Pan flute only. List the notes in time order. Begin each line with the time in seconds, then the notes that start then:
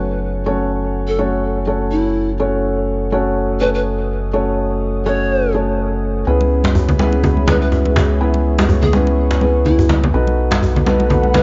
1.08 A4
1.91 E4
3.61 B4
3.74 B4
5.06 C#5
7.48 B4
7.61 B4
8.82 G#4
9.66 E4
11.35 B4